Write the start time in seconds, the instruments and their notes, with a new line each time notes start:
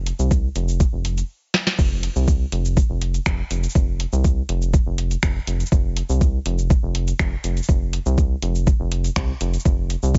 Already playing: analog synth bass F1
0.06 closed hi-hat, cabasa
0.19 analog synth bass C2, cabasa
0.31 kick, cabasa
0.56 analog synth bass F1, closed hi-hat, cabasa
0.68 cabasa
0.80 kick, cabasa
0.93 analog synth bass F1
1.05 closed hi-hat, cabasa
1.18 closed hi-hat, cabasa
1.54 snare
1.67 snare
1.79 analog synth bass F1, kick, crash, cabasa
2.03 closed hi-hat, cabasa
2.16 analog synth bass C2, cabasa
2.28 kick, cabasa
2.52 analog synth bass F1, closed hi-hat
2.65 cabasa
2.77 kick, cabasa
2.90 analog synth bass F1
3.02 closed hi-hat
3.14 closed hi-hat, cabasa
3.26 analog synth bass F1, finger snap, kick, cabasa
3.51 analog synth bass F1, closed hi-hat, cabasa
3.64 closed hi-hat, cabasa
3.69 cabasa
3.75 analog synth bass F1, kick
4.00 closed hi-hat, cabasa
4.13 analog synth bass C2, cabasa
4.24 kick, cabasa
4.49 analog synth bass F1, closed hi-hat
4.62 cabasa
4.74 kick, cabasa
4.86 analog synth bass F1
4.98 closed hi-hat
5.11 closed hi-hat, cabasa
5.23 analog synth bass F1, finger snap, kick, cabasa
5.47 analog synth bass F1, closed hi-hat, cabasa
5.60 closed hi-hat, cabasa
5.66 cabasa
5.72 analog synth bass F1, kick, cabasa
5.97 closed hi-hat, cabasa
6.09 analog synth bass C2, cabasa
6.21 kick, cabasa
6.46 analog synth bass F1, closed hi-hat
6.59 cabasa
6.70 kick, cabasa
6.83 analog synth bass F1
6.95 closed hi-hat
7.08 closed hi-hat, cabasa
7.19 analog synth bass F1, finger snap, kick, cabasa
7.44 analog synth bass F1, closed hi-hat, cabasa
7.57 closed hi-hat, cabasa
7.63 cabasa
7.69 analog synth bass F1, kick, cabasa
7.93 closed hi-hat, cabasa
8.06 analog synth bass C2, cabasa
8.18 kick, cabasa
8.42 analog synth bass F1, closed hi-hat, cabasa
8.55 cabasa
8.67 kick, cabasa
8.80 analog synth bass F1
8.92 closed hi-hat
9.04 closed hi-hat, cabasa
9.16 analog synth bass C2, finger snap, kick, cabasa
9.41 analog synth bass F1, closed hi-hat, cabasa
9.54 closed hi-hat, cabasa
9.60 cabasa
9.65 analog synth bass F1, kick, cabasa
9.90 closed hi-hat, cabasa
10.03 analog synth bass C2, cabasa
10.15 kick, cabasa